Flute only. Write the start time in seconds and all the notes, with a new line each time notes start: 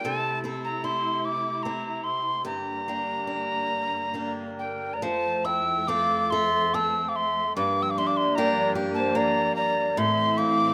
4.60 A#4
4.95 D5
5.03 C5
5.46 G5
5.90 F5
6.32 E5
6.74 A5
7.08 F5
7.15 E5
7.57 F5
7.81 G5
7.89 F5
7.99 E5
8.07 F5
8.17 E5
8.38 D5
8.98 C5
9.17 D5
9.56 D5
9.98 E5
10.39 F5